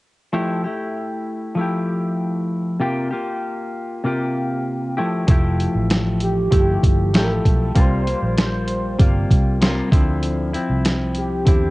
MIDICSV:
0, 0, Header, 1, 5, 480
1, 0, Start_track
1, 0, Key_signature, -1, "major"
1, 0, Tempo, 618684
1, 258, Time_signature, 4, 2, 24, 8
1, 9080, End_track
2, 0, Start_track
2, 0, Title_t, "Soft synth lead"
2, 0, Program_c, 0, 80
2, 4831, Note_on_c, 0, 67, 89
2, 5564, Note_on_c, 0, 69, 75
2, 5575, Note_off_c, 0, 67, 0
2, 5608, Note_on_c, 0, 70, 70
2, 5619, Note_off_c, 0, 69, 0
2, 5670, Note_on_c, 0, 69, 91
2, 5682, Note_off_c, 0, 70, 0
2, 6046, Note_on_c, 0, 72, 116
2, 6057, Note_off_c, 0, 69, 0
2, 6512, Note_off_c, 0, 72, 0
2, 6519, Note_on_c, 0, 72, 98
2, 6958, Note_off_c, 0, 72, 0
2, 8670, Note_on_c, 0, 67, 82
2, 9080, Note_off_c, 0, 67, 0
2, 9080, End_track
3, 0, Start_track
3, 0, Title_t, "Clean electric guitar"
3, 0, Program_c, 1, 27
3, 256, Note_on_c, 1, 53, 71
3, 259, Note_on_c, 1, 57, 71
3, 264, Note_on_c, 1, 64, 79
3, 269, Note_on_c, 1, 67, 81
3, 488, Note_off_c, 1, 67, 0
3, 497, Note_off_c, 1, 53, 0
3, 497, Note_on_c, 1, 67, 50
3, 499, Note_off_c, 1, 57, 0
3, 499, Note_off_c, 1, 64, 0
3, 508, Note_on_c, 1, 64, 44
3, 514, Note_on_c, 1, 57, 38
3, 1203, Note_on_c, 1, 53, 54
3, 1210, Note_off_c, 1, 57, 0
3, 1219, Note_on_c, 1, 57, 54
3, 1223, Note_off_c, 1, 64, 0
3, 1226, Note_off_c, 1, 67, 0
3, 1231, Note_on_c, 1, 64, 65
3, 1248, Note_on_c, 1, 67, 61
3, 2170, Note_on_c, 1, 48, 67
3, 2173, Note_off_c, 1, 57, 0
3, 2176, Note_on_c, 1, 58, 70
3, 2178, Note_off_c, 1, 64, 0
3, 2181, Note_on_c, 1, 65, 76
3, 2183, Note_off_c, 1, 67, 0
3, 2186, Note_on_c, 1, 67, 91
3, 2210, Note_off_c, 1, 53, 0
3, 2402, Note_off_c, 1, 67, 0
3, 2412, Note_on_c, 1, 67, 52
3, 2414, Note_off_c, 1, 48, 0
3, 2415, Note_off_c, 1, 65, 0
3, 2417, Note_off_c, 1, 58, 0
3, 2425, Note_on_c, 1, 65, 46
3, 2431, Note_on_c, 1, 58, 39
3, 3129, Note_off_c, 1, 58, 0
3, 3132, Note_on_c, 1, 48, 58
3, 3138, Note_on_c, 1, 58, 62
3, 3146, Note_off_c, 1, 65, 0
3, 3149, Note_on_c, 1, 65, 65
3, 3153, Note_off_c, 1, 67, 0
3, 3156, Note_on_c, 1, 67, 60
3, 3853, Note_off_c, 1, 67, 0
3, 3855, Note_off_c, 1, 48, 0
3, 3857, Note_on_c, 1, 67, 58
3, 3858, Note_off_c, 1, 58, 0
3, 3860, Note_off_c, 1, 65, 0
3, 3863, Note_on_c, 1, 64, 57
3, 3869, Note_on_c, 1, 57, 59
3, 3871, Note_on_c, 1, 53, 49
3, 4081, Note_off_c, 1, 53, 0
3, 4090, Note_on_c, 1, 53, 79
3, 4093, Note_off_c, 1, 57, 0
3, 4097, Note_off_c, 1, 67, 0
3, 4100, Note_off_c, 1, 64, 0
3, 4102, Note_on_c, 1, 57, 77
3, 4111, Note_on_c, 1, 64, 85
3, 4120, Note_on_c, 1, 67, 81
3, 5046, Note_off_c, 1, 53, 0
3, 5047, Note_off_c, 1, 57, 0
3, 5050, Note_on_c, 1, 53, 52
3, 5055, Note_off_c, 1, 64, 0
3, 5056, Note_on_c, 1, 57, 62
3, 5064, Note_on_c, 1, 64, 58
3, 5066, Note_off_c, 1, 67, 0
3, 5069, Note_on_c, 1, 67, 60
3, 5531, Note_off_c, 1, 57, 0
3, 5532, Note_off_c, 1, 53, 0
3, 5535, Note_on_c, 1, 53, 53
3, 5540, Note_on_c, 1, 57, 60
3, 5541, Note_off_c, 1, 64, 0
3, 5551, Note_off_c, 1, 67, 0
3, 5551, Note_on_c, 1, 64, 59
3, 5554, Note_on_c, 1, 67, 66
3, 6007, Note_off_c, 1, 53, 0
3, 6011, Note_on_c, 1, 48, 69
3, 6013, Note_off_c, 1, 57, 0
3, 6014, Note_off_c, 1, 64, 0
3, 6016, Note_on_c, 1, 55, 81
3, 6017, Note_on_c, 1, 58, 67
3, 6023, Note_off_c, 1, 67, 0
3, 6026, Note_on_c, 1, 65, 82
3, 6247, Note_off_c, 1, 65, 0
3, 6254, Note_off_c, 1, 48, 0
3, 6256, Note_on_c, 1, 65, 46
3, 6257, Note_off_c, 1, 55, 0
3, 6258, Note_off_c, 1, 58, 0
3, 6266, Note_on_c, 1, 58, 43
3, 6279, Note_on_c, 1, 55, 33
3, 6968, Note_off_c, 1, 55, 0
3, 6972, Note_on_c, 1, 48, 52
3, 6977, Note_off_c, 1, 58, 0
3, 6978, Note_on_c, 1, 55, 57
3, 6986, Note_on_c, 1, 58, 60
3, 6990, Note_off_c, 1, 65, 0
3, 6993, Note_on_c, 1, 65, 62
3, 7445, Note_off_c, 1, 48, 0
3, 7452, Note_off_c, 1, 55, 0
3, 7454, Note_on_c, 1, 48, 62
3, 7458, Note_off_c, 1, 58, 0
3, 7461, Note_on_c, 1, 55, 65
3, 7467, Note_off_c, 1, 65, 0
3, 7468, Note_on_c, 1, 58, 68
3, 7470, Note_on_c, 1, 65, 73
3, 7691, Note_off_c, 1, 65, 0
3, 7694, Note_on_c, 1, 64, 64
3, 7696, Note_off_c, 1, 48, 0
3, 7699, Note_off_c, 1, 55, 0
3, 7699, Note_off_c, 1, 58, 0
3, 7702, Note_on_c, 1, 53, 63
3, 7702, Note_on_c, 1, 60, 64
3, 7707, Note_on_c, 1, 50, 58
3, 8164, Note_off_c, 1, 64, 0
3, 8173, Note_on_c, 1, 64, 50
3, 8181, Note_off_c, 1, 60, 0
3, 8183, Note_off_c, 1, 50, 0
3, 8184, Note_on_c, 1, 60, 50
3, 8189, Note_off_c, 1, 53, 0
3, 8192, Note_on_c, 1, 53, 42
3, 8888, Note_on_c, 1, 50, 52
3, 8896, Note_off_c, 1, 64, 0
3, 8901, Note_off_c, 1, 60, 0
3, 8904, Note_on_c, 1, 60, 63
3, 8907, Note_on_c, 1, 64, 62
3, 8930, Note_off_c, 1, 53, 0
3, 9080, Note_off_c, 1, 50, 0
3, 9080, Note_off_c, 1, 60, 0
3, 9080, Note_off_c, 1, 64, 0
3, 9080, End_track
4, 0, Start_track
4, 0, Title_t, "Fingered electric bass"
4, 0, Program_c, 2, 33
4, 4098, Note_on_c, 2, 29, 90
4, 4386, Note_off_c, 2, 29, 0
4, 4460, Note_on_c, 2, 33, 75
4, 5029, Note_off_c, 2, 33, 0
4, 5061, Note_on_c, 2, 31, 72
4, 5252, Note_off_c, 2, 31, 0
4, 5302, Note_on_c, 2, 31, 83
4, 5540, Note_off_c, 2, 31, 0
4, 5540, Note_on_c, 2, 33, 82
4, 5731, Note_off_c, 2, 33, 0
4, 5783, Note_on_c, 2, 35, 82
4, 5973, Note_off_c, 2, 35, 0
4, 6020, Note_on_c, 2, 36, 89
4, 6307, Note_off_c, 2, 36, 0
4, 6381, Note_on_c, 2, 34, 68
4, 6950, Note_off_c, 2, 34, 0
4, 6981, Note_on_c, 2, 31, 79
4, 7172, Note_off_c, 2, 31, 0
4, 7221, Note_on_c, 2, 36, 73
4, 7604, Note_off_c, 2, 36, 0
4, 7698, Note_on_c, 2, 38, 83
4, 8178, Note_off_c, 2, 38, 0
4, 8297, Note_on_c, 2, 36, 69
4, 8868, Note_off_c, 2, 36, 0
4, 8900, Note_on_c, 2, 40, 72
4, 9080, Note_off_c, 2, 40, 0
4, 9080, End_track
5, 0, Start_track
5, 0, Title_t, "Drums"
5, 4096, Note_on_c, 9, 42, 74
5, 4098, Note_on_c, 9, 36, 100
5, 4173, Note_off_c, 9, 42, 0
5, 4176, Note_off_c, 9, 36, 0
5, 4343, Note_on_c, 9, 42, 52
5, 4421, Note_off_c, 9, 42, 0
5, 4578, Note_on_c, 9, 42, 80
5, 4584, Note_on_c, 9, 38, 89
5, 4656, Note_off_c, 9, 42, 0
5, 4662, Note_off_c, 9, 38, 0
5, 4813, Note_on_c, 9, 42, 59
5, 4890, Note_off_c, 9, 42, 0
5, 5058, Note_on_c, 9, 42, 87
5, 5060, Note_on_c, 9, 36, 75
5, 5136, Note_off_c, 9, 42, 0
5, 5138, Note_off_c, 9, 36, 0
5, 5301, Note_on_c, 9, 36, 83
5, 5304, Note_on_c, 9, 42, 74
5, 5378, Note_off_c, 9, 36, 0
5, 5381, Note_off_c, 9, 42, 0
5, 5540, Note_on_c, 9, 42, 92
5, 5547, Note_on_c, 9, 38, 112
5, 5617, Note_off_c, 9, 42, 0
5, 5624, Note_off_c, 9, 38, 0
5, 5782, Note_on_c, 9, 36, 75
5, 5784, Note_on_c, 9, 42, 68
5, 5859, Note_off_c, 9, 36, 0
5, 5862, Note_off_c, 9, 42, 0
5, 6016, Note_on_c, 9, 42, 77
5, 6018, Note_on_c, 9, 36, 99
5, 6094, Note_off_c, 9, 42, 0
5, 6096, Note_off_c, 9, 36, 0
5, 6263, Note_on_c, 9, 42, 54
5, 6340, Note_off_c, 9, 42, 0
5, 6499, Note_on_c, 9, 42, 78
5, 6505, Note_on_c, 9, 38, 92
5, 6576, Note_off_c, 9, 42, 0
5, 6582, Note_off_c, 9, 38, 0
5, 6732, Note_on_c, 9, 42, 59
5, 6810, Note_off_c, 9, 42, 0
5, 6980, Note_on_c, 9, 36, 85
5, 6980, Note_on_c, 9, 42, 87
5, 7057, Note_off_c, 9, 36, 0
5, 7058, Note_off_c, 9, 42, 0
5, 7221, Note_on_c, 9, 36, 80
5, 7225, Note_on_c, 9, 42, 69
5, 7298, Note_off_c, 9, 36, 0
5, 7303, Note_off_c, 9, 42, 0
5, 7460, Note_on_c, 9, 42, 91
5, 7467, Note_on_c, 9, 38, 110
5, 7538, Note_off_c, 9, 42, 0
5, 7545, Note_off_c, 9, 38, 0
5, 7697, Note_on_c, 9, 36, 97
5, 7705, Note_on_c, 9, 42, 67
5, 7775, Note_off_c, 9, 36, 0
5, 7782, Note_off_c, 9, 42, 0
5, 7935, Note_on_c, 9, 42, 73
5, 8013, Note_off_c, 9, 42, 0
5, 8181, Note_on_c, 9, 42, 56
5, 8258, Note_off_c, 9, 42, 0
5, 8419, Note_on_c, 9, 42, 82
5, 8425, Note_on_c, 9, 38, 90
5, 8496, Note_off_c, 9, 42, 0
5, 8502, Note_off_c, 9, 38, 0
5, 8649, Note_on_c, 9, 42, 55
5, 8727, Note_off_c, 9, 42, 0
5, 8897, Note_on_c, 9, 42, 92
5, 8898, Note_on_c, 9, 36, 80
5, 8974, Note_off_c, 9, 42, 0
5, 8975, Note_off_c, 9, 36, 0
5, 9080, End_track
0, 0, End_of_file